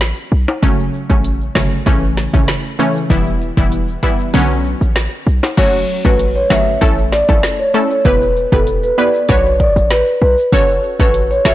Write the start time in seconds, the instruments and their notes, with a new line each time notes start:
Already playing: 808-style bass A1, synth pluck D3 F#3 B3 C#4
0.00 finger snap, snare, closed hi-hat, shaker
0.17 shaker
0.32 808-style bass B1
0.48 high timbale, shaker
0.62 808-style bass F#1, synth pluck C#3 F#3 A3 C#4, kick, closed hi-hat, shaker
0.79 shaker
0.94 shaker
1.10 808-style bass A1, synth pluck C#3 F#3 A3 C#4, kick, shaker
1.25 closed hi-hat, shaker
1.41 shaker
1.55 808-style bass G1, synth pluck C#3 F#3 A3 C#4, finger snap, kick, snare, shaker
1.72 shaker
1.86 808-style bass A1, synth pluck C#3 E3 A3 C#4, kick, closed hi-hat, shaker
2.03 shaker
2.17 snare
2.33 808-style bass A1, synth pluck C#3 E3 A3 C#4, kick, shaker
2.48 finger snap, snare, closed hi-hat, shaker
2.65 shaker
2.79 synth pluck C#3 E3 A3 C#4
2.96 shaker
3.10 808-style bass E1, synth pluck E3 G3 B3 E4, kick, closed hi-hat, shaker
3.27 shaker
3.41 shaker
3.57 808-style bass E1, synth pluck E3 G3 B3 E4, kick, shaker
3.72 closed hi-hat, shaker
3.88 shaker
4.03 synth pluck E3 G3 B3 E4, kick, shaker
4.19 shaker
4.34 808-style bass B1, synth pluck D3 F#3 B3 C#4, closed hi-hat, shaker
4.51 shaker
4.65 shaker
4.81 808-style bass A1, shaker
4.96 finger snap, snare, closed hi-hat, shaker
5.13 shaker
5.27 808-style bass B1, shaker
5.43 snare, high timbale, shaker
5.57 808-style bass F#1, synth pluck F#3 A3 C#4 F#4, marimba C#5, kick, closed hi-hat, crash, shaker
5.74 shaker
5.89 shaker
6.05 808-style bass A1, synth pluck F#3 A3 C#4 F#4, marimba B4, kick, shaker
6.20 closed hi-hat, shaker
6.36 marimba C#5, shaker
6.50 808-style bass G1, synth pluck F#3 A3 C#4 F#4, marimba E5, finger snap, kick, snare
6.67 shaker
6.81 808-style bass A1, synth pluck A3 C#4 E4 A4, kick, closed hi-hat, shaker
6.98 shaker
7.12 marimba D5, snare
7.29 808-style bass A1, synth pluck A3 C#4 E4 A4, kick, shaker
7.43 finger snap, snare, closed hi-hat, shaker
7.60 marimba C#5, shaker
7.74 synth pluck A3 C#4 E4 A4
7.91 marimba C#5, shaker
8.05 808-style bass E1, synth pluck B3 E4 G4 B4, marimba B4, kick, closed hi-hat, shaker
8.22 shaker
8.36 shaker
8.52 808-style bass E1, synth pluck B3 E4 G4 B4, marimba A4, kick, shaker
8.67 closed hi-hat, shaker
8.83 marimba B4, shaker
8.98 synth pluck B3 E4 G4 B4, marimba D5
9.14 shaker
9.29 808-style bass B1, synth pluck D4 F#4 B4 C#5, marimba C#5, kick, closed hi-hat, shaker
9.45 shaker
9.60 marimba D5, kick
9.76 808-style bass A1, shaker
9.90 marimba B4, finger snap, snare, closed hi-hat, shaker
10.08 shaker
10.22 808-style bass B1, marimba B4
10.38 shaker
10.52 808-style bass F#1, synth pluck C#4 F#4 A4 C#5, marimba C#5, kick, closed hi-hat, shaker
10.69 shaker
10.84 shaker
11.00 808-style bass A1, synth pluck C#4 F#4 A4 C#5, marimba B4, kick, shaker
11.14 closed hi-hat, shaker
11.31 marimba C#5, shaker
11.45 808-style bass G1, synth pluck C#4 F#4 A4 C#5, marimba E5, finger snap, kick, snare